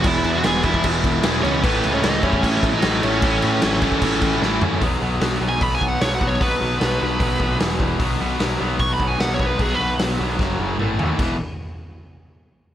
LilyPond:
<<
  \new Staff \with { instrumentName = "Lead electric guitar" } { \time 4/4 \key e \major \tempo 4 = 151 <e' e''>8. <fis' fis''>16 <gis' gis''>8 <e' e''>8 r4. <cis' cis''>8 | <b b'>8. <cis' cis''>16 <dis' dis''>8 <cis' cis''>4~ <cis' cis''>16 <dis' dis''>8. <cis' cis''>8~ | <cis' cis''>2. r4 | r4 \tuplet 3/2 { r4 gis''8 b''8 gis''8 fis''8 cis''8 fis''8 cis''8 } |
b'2. r4 | r2 \tuplet 3/2 { cis'''8 b''8 gis''8 fis''8 cis''8 b'8 } | \tuplet 3/2 { gis'8 b'8. r16 } r2. | r1 | }
  \new Staff \with { instrumentName = "Distorted electric guitar" } { \time 4/4 \key e \major <e gis b e'>4 <e gis b e'>8 <e gis b e'>8 <e gis b e'>4 <e gis b e'>8 <e gis b e'>8 | <a, e a cis' e'>4 <a, e a cis' e'>8 <a, e a cis' e'>8 <a, e a cis' e'>4 <a, e a cis' e'>8 <a, e a cis' e'>8 | <a, e a cis' e'>4 <a, e a cis' e'>8 <a, e a cis' e'>8 <a, e a cis' e'>4 <a, e a cis' e'>8 <a, e a cis' e'>8 | r1 |
r1 | r1 | r1 | r1 | }
  \new Staff \with { instrumentName = "Overdriven electric guitar" } { \clef bass \time 4/4 \key e \major <e, b, e>4. <e, b, e>4. <e, b, e>4 | <a, e a>4. <a, e a>4. <a, e a>4 | <a, e a>4. <a, e a>4. <a, e a>4 | <b, fis b>8 <b, fis b>8 <b, fis b>8 <b, fis b>8 <b, fis b>8 <b, fis b>8 <b, fis b>8 <b, fis b>8 |
<b, fis b>8 <b, fis b>8 <b, fis b>8 <b, fis b>8 <b, fis b>8 <b, fis b>8 <e, b, e>8 <e, b, e>8 | <b, fis b>8 <b, fis b>8 <b, fis b>8 <b, fis b>8 <b, fis b>8 <b, fis b>8 <b, fis b>8 <b, fis b>8 | <b, fis b>8 <b, fis b>8 <b, fis b>8 <b, fis b>8 <fis, cis fis>8 <fis, cis fis>8 <a, e a>8 <a, e a>8 | <e, b, e>8 r2. r8 | }
  \new Staff \with { instrumentName = "Picked electric bass" } { \clef bass \time 4/4 \key e \major e,,8 e,8 e,,4 e,,8 e,,8 e,,8 cis,8 | a,,8 cis,8 cis,8 e,8 a,,8 a,,8 a,,8 a,,8 | a,,8 a,8 a,,4 a,,8 a,,8 a,,8 fis,8 | b,,8 b,,8 b,,8 b,,8 b,,8 b,,8 b,,8 b,,8 |
b,,8 b,,8 b,,8 b,,8 b,,8 b,,8 e,,8 e,,8 | b,,8 b,,8 b,,8 b,,8 b,,8 b,,8 b,,8 b,,8 | b,,8 b,,8 b,,8 b,,8 fis,,8 fis,,8 a,,8 dis,8 | e,,8 r2. r8 | }
  \new DrumStaff \with { instrumentName = "Drums" } \drummode { \time 4/4 <cymc bd>8 cymc8 <cymc sn>8 <cymc bd>16 bd16 <cymc bd>8 <cymc bd>8 <cymc sn>8 cymc8 | <cymc bd>8 cymc8 <cymc sn>8 <cymc bd>16 bd16 <cymc bd>8 <cymc bd>8 <cymc sn>8 cymc8 | <cymc bd>8 cymc8 <cymc sn>8 <cymc bd>16 bd16 <cymc bd>8 <cymc bd>8 sn8 tomfh8 | <hho bd>4 <hho sn>4 <hho bd>8 bd8 <hho sn>8 bd8 |
<hho bd>4 <hho sn>4 <hho bd>8 bd8 <hho sn>8 bd8 | <hho bd>4 <hho sn>4 <hho bd>8 bd8 <hho sn>8 bd8 | <hho bd>4 <hho sn>4 <bd sn>4 toml8 tomfh8 | <cymc bd>4 r4 r4 r4 | }
>>